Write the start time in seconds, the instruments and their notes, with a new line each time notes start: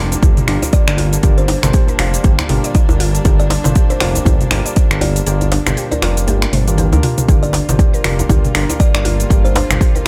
Already playing: analog synth bass F1, string section D3 G3 A#3 D4, tine electric piano A#3 D4 F4 G4 A#4
0.12 closed hi-hat, djembe tone, cabasa
0.22 analog synth bass G1, synth pluck G4, kick, closed hi-hat, djembe bass, cabasa
0.37 closed hi-hat, mid tom, cabasa
0.47 analog synth bass G1, tine electric piano A#3 D4 F4 G4 A#4, synth pluck D4, finger snap, open hi-hat
0.62 synth pluck D5, closed hi-hat, djembe tone, cabasa
0.73 kalimba D5, synth pluck D5, kick, closed hi-hat, cabasa
0.87 analog synth bass G1, tine electric piano A#3 D4 F4 G4 A#4, kalimba D5, finger snap, cabasa
0.98 synth pluck F4, open hi-hat, djembe tone
1.13 closed hi-hat, cabasa
1.23 analog synth bass G1, tine electric piano A#3 D4 F4 G4 A#4, synth pluck G4, kick, closed hi-hat, cabasa
1.38 kalimba C5, closed hi-hat, cabasa
1.48 synth pluck D4, open hi-hat, djembe slap, djembe tone
1.63 analog synth bass G1, tine electric piano A#3 D4 F4 G4 C5, finger snap, closed hi-hat, mid tom, djembe slap, cabasa
1.73 synth pluck G4, kick, open hi-hat, cabasa
1.88 synth pluck A#4, closed hi-hat, djembe tone, cabasa
1.99 analog synth bass F1, tine electric piano A#3 D4 F4 G4 A#4, synth pluck F4, finger snap, open hi-hat, djembe slap
2.14 closed hi-hat, cabasa
2.24 analog synth bass G1, synth pluck G4, kick, closed hi-hat, cabasa
2.39 finger snap, closed hi-hat, djembe tone, cabasa
2.49 analog synth bass G1, tine electric piano A#3 D4 F4 G4 A#4, synth pluck D4, mid tom, open hi-hat
2.64 synth pluck D5, closed hi-hat, cabasa
2.74 synth pluck D5, kick, closed hi-hat, djembe tone, cabasa
2.89 analog synth bass G1, tine electric piano A#3 D4 F4 G4 A#4, djembe slap, djembe bass, cabasa
3.00 synth pluck F4, open hi-hat
3.15 closed hi-hat, cabasa
3.25 analog synth bass G1, tine electric piano A#3 D4 F4 G4 A#4, synth pluck G4, kick, closed hi-hat, djembe tone, cabasa
3.40 kalimba D5, closed hi-hat, cabasa
3.50 synth pluck D4, open hi-hat, djembe slap
3.64 analog synth bass G1, tine electric piano A#3 D4 F4 G4 C5, closed hi-hat, mid tom, djembe slap, djembe tone, cabasa
3.75 synth pluck G4, kick, closed hi-hat, cabasa
3.90 synth pluck A#4, kalimba C5, closed hi-hat, cabasa
4.00 analog synth bass F1, tine electric piano A#3 D4 F4 G4 A#4, synth pluck F4, finger snap, open hi-hat, djembe slap
4.15 closed hi-hat, djembe tone, cabasa
4.25 analog synth bass G1, synth pluck G4, kick, closed hi-hat, djembe bass, cabasa
4.41 closed hi-hat, mid tom, cabasa
4.51 analog synth bass G1, tine electric piano A#3 D4 F4 G4 A#4, synth pluck D4, finger snap, open hi-hat, djembe tone
4.65 synth pluck D5, closed hi-hat, cabasa
4.76 synth pluck D5, kick, closed hi-hat, cabasa
4.91 analog synth bass G1, tine electric piano A#3 D4 F4 G4 A#4, finger snap, cabasa
5.01 synth pluck F4, kalimba D5, open hi-hat, djembe tone
5.16 closed hi-hat, cabasa
5.27 analog synth bass G1, tine electric piano A#3 D4 F4 G4 A#4, synth pluck G4, closed hi-hat, cabasa
5.41 closed hi-hat, djembe tone, cabasa
5.52 synth pluck D4, open hi-hat, djembe slap
5.66 analog synth bass G1, tine electric piano A#3 D4 F4 G4 C5, finger snap, closed hi-hat, mid tom, djembe slap, cabasa
5.77 synth pluck G4, open hi-hat, cabasa
5.91 synth pluck A#4, kalimba D5, closed hi-hat, djembe tone, cabasa
6.02 analog synth bass F1, tine electric piano A#3 D4 F4 G4 A#4, synth pluck F4, finger snap, open hi-hat, djembe slap
6.17 closed hi-hat, cabasa
6.27 analog synth bass G1, synth pluck G4, closed hi-hat, high tom, djembe tone, cabasa
6.42 finger snap, closed hi-hat, high tom, cabasa
6.53 analog synth bass G1, synth pluck C5, mid tom, open hi-hat, high tom
6.68 tine electric piano A#3 D4 F4 G4 A#4, closed hi-hat, mid tom, cabasa
6.78 synth pluck G4, closed hi-hat, mid tom, djembe tone, cabasa
6.92 analog synth bass D2, tine electric piano A#3 D4 F4 G4 A#4, closed hi-hat, djembe slap, djembe bass, cabasa
7.03 synth pluck F4, mid tom, open hi-hat
7.18 closed hi-hat, mid tom, djembe tone, cabasa
7.29 analog synth bass G1, string section D3 G3 A#3 F4, tine electric piano A#3 D4 F4 G4 A#4, synth pluck G4, kick, closed hi-hat, djembe tone, cabasa
7.43 kalimba D5, closed hi-hat, cabasa
7.53 synth pluck D4, open hi-hat, djembe slap
7.69 analog synth bass G1, tine electric piano A#3 D4 F4 G4 C5, closed hi-hat, mid tom, djembe slap, cabasa
7.79 synth pluck G4, kick, closed hi-hat, djembe tone, cabasa
7.94 synth pluck A#4, closed hi-hat, cabasa
8.04 analog synth bass F1, tine electric piano A#3 D4 F4 G4 A#4, synth pluck F4, finger snap, open hi-hat, djembe slap
8.19 closed hi-hat, djembe tone, cabasa
8.29 analog synth bass G1, synth pluck G4, kick, closed hi-hat, djembe bass, cabasa
8.45 closed hi-hat, mid tom, cabasa
8.55 analog synth bass G1, tine electric piano A#3 D4 F4 G4 A#4, synth pluck D4, finger snap, open hi-hat
8.69 synth pluck D5, closed hi-hat, djembe tone, cabasa
8.80 synth pluck D5, kalimba D5, kick, closed hi-hat, cabasa
8.94 analog synth bass G1, tine electric piano A#3 D4 F4 G4 A#4, kalimba D5, finger snap, cabasa
9.05 synth pluck F4, open hi-hat, djembe tone
9.20 closed hi-hat, cabasa
9.30 analog synth bass G1, tine electric piano A#3 D4 F4 G4 A#4, synth pluck G4, kick, closed hi-hat, cabasa
9.45 kalimba C5, closed hi-hat, cabasa
9.55 synth pluck D4, open hi-hat, djembe slap, djembe tone
9.70 analog synth bass G1, tine electric piano A#3 D4 F4 G4 C5, finger snap, closed hi-hat, mid tom, djembe slap, cabasa
9.81 synth pluck G4, kick, open hi-hat, cabasa
9.95 synth pluck A#4, closed hi-hat, djembe tone, cabasa